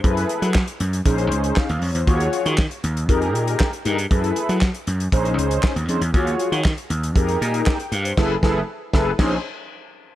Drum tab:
CC |----------------|----------------|----------------|----------------|
HH |xxxx-xxxxxxx-xox|xxxx-xxxxxxx-xxx|xxxx-xxxxxxx-xxx|xxxx-xxxxxxx-xxx|
CP |----x-------x---|----x-------x---|----x-------x---|----x-------x---|
SD |----o-------o---|----o-------o---|----o-------o---|----o-------o---|
BD |o---o---o---o---|o---o---o---o---|o---o---o---o---|o---o---o---o---|

CC |x-------x-------|
HH |----------------|
CP |----------------|
SD |o-o---o-o-------|
BD |o-o---o-o-------|